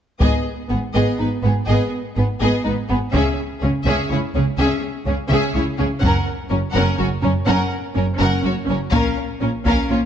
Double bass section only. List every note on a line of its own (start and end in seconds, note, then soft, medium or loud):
0.21 0.29 G#1 soft
0.71 0.79 G#1 soft
0.95 1.03 G#1 soft
1.20 1.28 G#1 soft
1.44 1.52 G#1 soft
1.68 1.76 G#1 soft
2.17 2.25 G#1 soft
2.41 2.49 G#1 soft
2.66 2.74 G#1 soft
2.90 2.98 G#1 soft
3.13 3.21 C#2 soft
3.62 3.70 C#2 soft
3.86 3.94 C#2 soft
4.11 4.19 C#2 soft
4.35 4.43 C#2 soft
4.58 4.66 C#2 soft
5.07 5.15 C#2 soft
5.30 5.38 C#2 medium
5.55 5.63 C#2 soft
5.80 5.88 C#2 soft
6.04 6.12 F#1 medium
6.51 6.59 F#1 soft
6.76 6.84 F#1 medium
7.00 7.08 F#1 soft
7.24 7.32 F#1 soft
7.48 7.56 F#1 medium
7.96 8.04 F#1 soft
8.20 8.28 F#1 medium
8.44 8.52 F#1 soft
8.68 8.76 F#1 soft
8.93 9.01 A#1 medium
9.42 9.50 A#1 soft
9.66 9.74 A#1 medium
9.91 9.99 A#1 soft